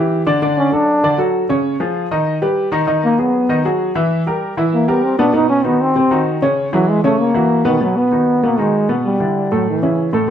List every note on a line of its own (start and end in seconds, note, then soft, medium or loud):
0.00 0.21 E3 medium
0.00 0.21 E4 medium
0.00 0.21 G4 medium
0.26 0.39 D3 medium
0.26 0.39 D4 medium
0.26 0.39 D5 medium
0.42 0.67 D3 medium
0.42 0.67 D4 medium
0.42 0.68 D5 medium
0.57 0.74 C#4 loud
0.72 0.98 F#3 medium
0.72 1.19 D4 loud
0.72 0.98 F#4 medium
0.72 0.98 A4 medium
1.03 1.16 D3 medium
1.03 1.16 D4 medium
1.03 1.16 D5 medium
1.18 1.44 F#3 medium
1.18 1.44 F#4 medium
1.18 1.44 A4 medium
1.49 1.75 C#3 medium
1.49 1.75 C#4 medium
1.49 1.75 C#5 medium
1.80 2.05 F3 medium
1.80 2.06 F4 medium
1.80 2.06 G#4 medium
2.11 2.36 D#3 medium
2.11 2.37 D#4 medium
2.11 2.37 D#5 medium
2.42 2.67 G3 medium
2.42 2.67 G4 medium
2.42 2.67 B4 medium
2.72 2.85 D#3 medium
2.72 2.85 D#4 medium
2.72 2.85 D#5 medium
2.87 3.12 D#3 medium
2.87 3.13 D#4 medium
2.87 3.13 D#5 medium
3.04 3.21 A#3 medium
3.18 3.44 F#3 medium
3.18 3.65 B3 medium
3.18 3.44 F#4 medium
3.18 3.44 G#4 medium
3.49 3.62 D#3 medium
3.49 3.62 D#4 medium
3.49 3.62 D#5 medium
3.65 3.90 F#3 medium
3.65 3.90 F#4 medium
3.65 3.90 G#4 medium
3.95 4.21 E3 medium
3.95 4.21 E4 medium
3.95 4.21 E5 medium
4.27 4.52 G3 medium
4.27 4.52 G4 medium
4.27 4.52 A#4 medium
4.57 4.82 E3 medium
4.57 4.83 E4 medium
4.57 4.83 E5 medium
4.74 4.90 A#3 medium
4.88 5.13 G3 medium
4.88 5.05 B3 medium
4.88 5.13 G4 medium
4.88 5.14 A#4 medium
5.04 5.19 C4 medium
5.19 5.31 B2 medium
5.19 5.31 B3 loud
5.19 5.36 D4 loud
5.19 5.32 B4 medium
5.33 5.59 B2 medium
5.33 5.59 B3 medium
5.33 5.49 D#4 loud
5.33 5.59 B4 medium
5.50 5.67 C#4 loud
5.64 5.90 D#3 medium
5.64 5.83 B3 loud
5.64 5.90 D#4 medium
5.64 5.90 F#4 medium
5.81 6.27 C4 loud
5.96 6.08 C3 medium
5.96 6.08 C4 medium
5.96 6.09 C5 medium
6.11 6.36 D#3 medium
6.11 6.36 D#4 medium
6.11 6.37 F#4 medium
6.42 6.67 C#3 medium
6.42 6.67 C#4 medium
6.42 6.68 C#5 medium
6.73 6.98 E3 medium
6.73 6.90 F#3 loud
6.73 6.98 E4 medium
6.73 6.98 G#4 medium
6.89 7.04 G#3 medium
7.04 7.29 C#3 medium
7.04 7.21 A3 loud
7.04 7.29 C#4 medium
7.04 7.30 C#5 medium
7.19 7.65 A#3 medium
7.34 7.60 E3 medium
7.34 7.60 E4 medium
7.34 7.60 F#4 medium
7.65 7.78 B2 medium
7.65 7.80 D#3 medium
7.65 7.78 B3 medium
7.65 7.78 B4 medium
7.81 8.06 B2 medium
7.81 7.98 F#3 medium
7.81 8.06 B3 medium
7.81 8.07 B4 medium
7.96 8.46 B3 loud
8.12 8.37 D#3 medium
8.12 8.37 D#4 medium
8.12 8.37 F#4 medium
8.43 8.56 B2 medium
8.43 8.61 A#3 medium
8.43 8.56 B3 medium
8.43 8.56 B4 medium
8.58 8.84 D#3 medium
8.58 8.90 G#3 loud
8.58 8.84 D#4 medium
8.58 8.84 F#4 medium
8.89 9.14 B2 medium
8.89 9.15 B3 medium
8.89 9.15 B4 medium
9.05 9.55 G3 medium
9.20 9.46 D3 medium
9.20 9.46 D4 medium
9.20 9.46 E4 medium
9.52 9.77 A2 medium
9.52 9.68 F#3 medium
9.52 9.77 A3 medium
9.52 9.77 A4 medium
9.70 10.12 E3 medium
9.82 10.08 C#3 medium
9.82 10.08 C#4 medium
9.82 10.08 E4 medium
10.13 10.26 A2 medium
10.13 10.26 A3 medium
10.13 10.26 A4 medium